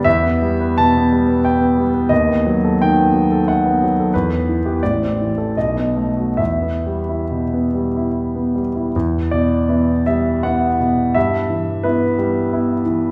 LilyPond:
<<
  \new Staff \with { instrumentName = "Grand piano" } { \time 3/4 \key e \minor \tempo 4 = 86 e''4 a''4 g''4 | dis''4 g''4 fis''4 | b'4 d''4 dis''4 | e''2~ e''8 r8 |
r8 d''4 e''8 fis''4 | e''4 b'4. r8 | }
  \new Staff \with { instrumentName = "Grand piano" } { \time 3/4 \key e \minor e,16 b16 g16 b'16 b,16 b16 g16 b'8 b16 g16 b'16 | dis,16 b16 fis16 a'16 dis16 b16 fis16 a'8 b16 fis16 a'16 | e,16 b16 e16 g'16 a,,16 c'16 e16 a'16 b,,16 b16 a16 fis'16 | e,16 b16 g16 e'16 b,16 b16 g16 e'8 b16 g16 e'16 |
e,8 b,8 <b e'>8 g8 <b e'>8 b,8 | g,8 e8 <b e'>8 g8 <b e'>8 e8 | }
>>